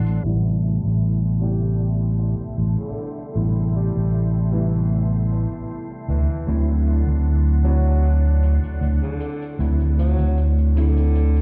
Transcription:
0.00 0.18 A1 loud
0.00 0.19 D3 loud
0.00 0.19 F#3 medium
0.00 0.20 A3 medium
0.00 0.20 C4 medium
0.00 0.20 D4 medium
0.00 0.21 E4 loud
0.00 0.20 A4 medium
0.00 0.20 F#5 medium
0.00 0.20 C6 loud
0.06 closed hi-hat medium
0.23 0.78 A1 loud
0.23 1.36 C3 medium
0.23 1.37 G3 medium
0.23 1.37 A3 medium
0.23 1.37 B3 medium
0.23 6.44 E4 medium
0.23 1.38 E4 loud
0.23 11.42 A4 medium
0.23 6.44 G5 medium
0.23 11.42 C6 medium
0.23 closed hi-hat medium
0.45 closed hi-hat soft
0.63 closed hi-hat loud
0.84 2.34 A1 medium
0.84 closed hi-hat medium
1.02 closed hi-hat medium
1.22 closed hi-hat soft
1.40 3.31 C3 medium
1.40 3.31 G3 medium
1.40 1.88 G3 medium
1.40 3.32 A3 medium
1.40 3.32 B3 medium
1.40 3.32 E4 medium
1.40 closed hi-hat loud
1.62 closed hi-hat medium
1.80 closed hi-hat medium
2.01 closed hi-hat soft
2.18 closed hi-hat loud
2.40 closed hi-hat medium
2.58 2.75 A1 medium
2.58 closed hi-hat medium
2.78 3.25 D3 medium
2.78 closed hi-hat soft
2.97 closed hi-hat loud
3.17 closed hi-hat medium
3.35 3.90 A1 loud
3.35 3.54 C3 medium
3.35 3.55 G3 medium
3.35 3.55 A3 medium
3.35 3.55 B3 medium
3.35 3.55 E4 medium
3.35 closed hi-hat medium
3.57 closed hi-hat soft
3.75 4.22 G3 medium
3.75 closed hi-hat medium
3.95 5.46 A1 medium
3.95 closed hi-hat medium
4.13 closed hi-hat medium
4.34 closed hi-hat soft
4.51 6.42 C3 medium
4.51 5.00 E3 medium
4.51 6.43 G3 medium
4.51 6.43 A3 medium
4.51 6.43 B3 medium
4.51 6.44 E4 medium
4.51 closed hi-hat loud
4.73 closed hi-hat medium
4.92 closed hi-hat medium
5.12 closed hi-hat soft
5.31 closed hi-hat medium
5.51 closed hi-hat medium
5.70 closed hi-hat medium
5.90 closed hi-hat soft
6.08 6.26 D2 medium
6.08 6.56 E3 medium
6.08 closed hi-hat loud
6.30 closed hi-hat medium
6.46 7.01 D2 medium
6.46 7.59 D3 medium
6.46 7.60 F#3 medium
6.46 7.60 A3 medium
6.46 7.60 C4 medium
6.46 11.42 D4 medium
6.46 7.61 E4 loud
6.46 11.42 F#5 medium
6.46 closed hi-hat medium
6.69 closed hi-hat soft
6.87 closed hi-hat medium
7.07 8.57 D2 medium
7.07 closed hi-hat medium
7.26 closed hi-hat medium
7.46 closed hi-hat soft
7.63 9.54 D3 medium
7.63 9.54 F#3 medium
7.63 8.12 F#3 medium
7.63 9.55 A3 medium
7.63 9.55 C4 medium
7.63 9.56 E4 medium
7.63 closed hi-hat loud
7.85 closed hi-hat medium
8.04 closed hi-hat medium
8.25 closed hi-hat soft
8.43 closed hi-hat medium
8.63 muted fingered electric bass stroke soft
8.63 closed hi-hat medium
8.81 8.98 D2 medium
8.81 closed hi-hat medium
9.02 9.48 D3 medium
9.02 closed hi-hat soft
9.20 closed hi-hat medium
9.42 closed hi-hat medium
9.59 10.13 D2 loud
9.59 9.78 D3 medium
9.59 9.78 F#3 medium
9.59 9.78 A3 medium
9.59 9.79 C4 medium
9.59 9.79 E4 medium
9.59 closed hi-hat medium
9.80 closed hi-hat soft
9.98 10.46 F#3 medium
9.98 closed hi-hat medium
10.19 11.42 D2 medium
10.19 closed hi-hat medium
10.38 closed hi-hat medium
10.58 closed hi-hat soft
10.75 11.42 D3 medium
10.75 11.42 D3 loud
10.75 11.42 F#3 medium
10.75 11.42 A3 medium
10.75 11.42 C4 medium
10.75 11.42 E4 loud
10.75 closed hi-hat loud
10.97 closed hi-hat medium
11.15 closed hi-hat medium
11.36 closed hi-hat soft

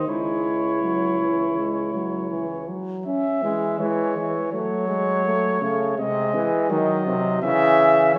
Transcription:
0.08 2.65 C#2 medium
0.08 0.81 G#3 medium
0.08 2.69 E4 medium
0.08 2.65 C#5 medium
0.82 1.19 F#3 medium
1.20 1.56 E3 soft
1.57 1.93 G#3 medium
1.94 2.30 F#3 medium
2.31 2.70 E3 medium
2.68 3.06 F#3 medium
3.06 3.44 C#4 medium
3.06 3.75 E5 medium
3.43 3.79 E3 medium
3.43 3.77 G#3 medium
3.79 4.15 E3 medium
3.79 4.35 G#3 medium
3.79 4.51 C#5 medium
4.17 4.52 E3 medium
4.52 5.60 F#3 medium
4.52 4.88 A3 medium
4.52 5.95 C#5 medium
4.88 5.24 G#3 medium
5.25 5.61 A3 medium
5.61 5.97 C#3 medium
5.61 5.97 A3 medium
5.98 6.36 C3 medium
5.98 6.72 G#3 medium
5.98 6.69 D#5 medium
6.34 6.72 E3 loud
6.70 7.06 D#3 medium
6.70 7.42 F#3 medium
6.70 7.41 D#5 medium
7.07 7.42 C3 medium
7.42 8.15 C#3 loud
7.42 8.14 E3 medium
7.42 8.14 E5 loud
8.15 8.18 C#5 medium

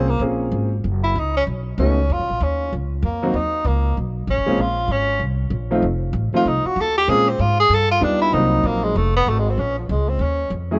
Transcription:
0.00 0.19 C2 medium
0.00 0.11 C4 medium
0.09 0.22 A#3 medium
0.19 0.51 A#1 medium
0.19 0.67 A#3 medium
0.19 0.68 C4 medium
0.19 0.68 C#4 medium
0.19 0.68 F4 medium
0.19 0.68 G#4 medium
0.52 0.82 G#1 medium
0.84 1.14 F#1 medium
1.04 1.21 E4 medium
1.15 1.46 C#2 medium
1.15 1.36 D#4 medium
1.37 1.43 C#4 medium
1.47 1.77 B1 medium
1.78 2.08 C#2 medium
1.78 1.95 A3 medium
1.78 1.96 B3 medium
1.78 1.96 C#4 medium
1.78 2.14 C#4 medium
1.78 1.96 D#4 medium
1.78 1.96 F#4 medium
2.10 2.21 F2 medium
2.10 2.44 F4 medium
2.19 2.29 C#2 medium
2.30 2.40 A#1 medium
2.41 2.71 D#2 medium
2.41 2.73 C#4 medium
2.73 3.02 C#2 medium
3.03 3.33 F2 medium
3.03 3.37 A#3 medium
3.22 3.33 F#3 medium
3.22 3.33 A#3 medium
3.22 3.33 C4 medium
3.22 3.33 D#4 medium
3.22 3.33 F#4 medium
3.34 3.64 D#2 medium
3.34 3.68 D#4 medium
3.65 3.95 C#2 medium
3.65 3.97 A#3 medium
3.97 4.27 B1 medium
4.27 4.38 A1 medium
4.27 4.62 C#4 medium
4.37 4.47 F#1 medium
4.46 4.57 D#1 medium
4.46 4.58 G#3 medium
4.46 4.58 A#3 medium
4.46 4.58 C4 medium
4.46 4.58 C#4 medium
4.46 4.58 F4 medium
4.58 4.87 A#1 medium
4.58 4.93 F4 medium
4.88 5.19 G#1 medium
4.88 5.22 C#4 medium
5.19 5.50 C2 medium
5.50 5.82 A#1 medium
5.71 5.82 F3 medium
5.71 5.82 A3 medium
5.71 5.82 C4 medium
5.71 5.83 D#4 medium
5.71 5.83 F4 medium
5.82 6.12 F1 medium
6.13 6.31 A1 medium
6.33 6.45 F3 medium
6.33 6.45 A3 medium
6.33 6.45 C4 medium
6.33 6.45 D#4 medium
6.33 6.45 F4 medium
6.33 6.49 F4 medium
6.33 muted upright bass stroke soft
6.45 6.63 C2 medium
6.45 6.68 D#4 medium
6.65 6.82 F#4 medium
6.65 muted upright bass stroke soft
6.76 7.07 D#2 medium
6.81 6.97 A4 loud
6.98 7.11 G4 medium
7.08 7.38 A#2 medium
7.08 7.25 G#3 medium
7.08 7.26 A#3 medium
7.08 7.26 C4 medium
7.08 7.25 C#4 medium
7.08 7.26 F4 medium
7.08 7.30 G#4 loud
7.29 7.43 C4 medium
7.39 7.69 G#2 medium
7.39 7.59 F4 medium
7.60 7.76 G#4 loud
7.69 8.00 G2 medium
7.74 7.91 A4 loud
7.91 8.05 F4 medium
8.01 8.31 D#2 medium
8.01 8.33 G3 medium
8.01 8.33 B3 medium
8.01 8.33 D4 medium
8.01 8.21 D4 medium
8.01 8.33 D#4 medium
8.01 8.33 F4 medium
8.21 8.35 E4 loud
8.33 8.63 C2 medium
8.33 8.95 F#3 medium
8.33 8.96 A#3 medium
8.33 8.96 C4 medium
8.33 8.68 D#4 medium
8.33 8.96 D#4 medium
8.33 8.96 F#4 medium
8.63 8.94 A#1 medium
8.63 8.85 A#3 medium
8.84 8.98 G#3 medium
8.95 9.26 F1 medium
8.95 9.15 A3 medium
9.17 9.31 B3 loud
9.26 9.57 G#1 medium
9.26 9.40 A3 medium
9.39 9.51 G#3 medium
9.50 9.61 C4 medium
9.57 9.88 A#1 medium
9.57 9.78 C#4 medium
9.79 9.92 F3 soft
9.89 10.18 C#2 medium
9.89 10.10 G#3 medium
10.09 10.24 C4 medium
10.19 10.50 D#2 medium
10.19 10.52 C#4 medium
10.50 10.79 F2 medium
10.71 10.79 F#3 medium
10.71 10.79 A3 medium
10.71 10.79 C#4 medium
10.71 10.79 E4 medium
10.71 10.79 G#4 medium

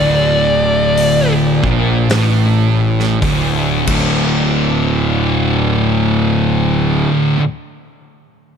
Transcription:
0.00 1.59 D1 medium
0.00 1.61 D2 loud
0.00 1.33 D5 loud
0.97 open hi-hat medium
1.63 2.07 A#1 medium
1.63 2.09 A#2 medium
1.63 kick medium
2.10 3.18 A1 loud
2.10 3.21 A2 loud
2.10 snare loud
2.10 open hi-hat medium
3.00 snare soft
3.22 3.84 D1 medium
3.22 3.85 D2 loud
3.22 kick loud
3.22 open hi-hat medium
3.87 7.04 D1 medium
3.87 7.37 D2 medium
3.87 7.39 A2 loud
3.87 kick loud
3.87 crash medium
3.91 7.41 D3 loud

